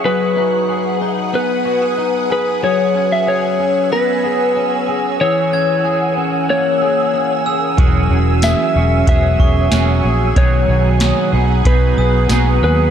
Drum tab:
HH |--------|--------|--------|x-x-x-x-|
TB |--------|--------|--------|--x---x-|
SD |--------|--------|--------|--o---o-|
BD |--------|--------|--------|o---oo--|

HH |x-x-x-x-|
TB |--x---x-|
SD |--o---o-|
BD |o---o---|